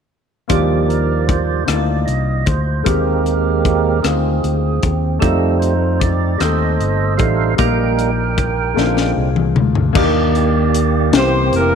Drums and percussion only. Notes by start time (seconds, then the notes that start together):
0.50 kick, closed hi-hat
0.90 closed hi-hat
1.29 kick, closed hi-hat
1.68 cross-stick, closed hi-hat
2.08 closed hi-hat
2.46 kick, closed hi-hat
2.86 kick, closed hi-hat
3.26 closed hi-hat
3.65 kick, closed hi-hat
4.04 cross-stick, closed hi-hat
4.44 closed hi-hat
4.83 kick, closed hi-hat
5.22 kick, closed hi-hat
5.62 closed hi-hat
6.01 kick, closed hi-hat
6.40 cross-stick, closed hi-hat
6.81 closed hi-hat
7.19 kick, closed hi-hat
7.58 kick, closed hi-hat
7.99 closed hi-hat
8.38 kick, closed hi-hat
8.77 snare
8.97 snare
9.36 mid tom
9.56 mid tom
9.75 floor tom
9.95 kick, crash
10.35 closed hi-hat
10.74 closed hi-hat
11.13 snare, closed hi-hat
11.53 closed hi-hat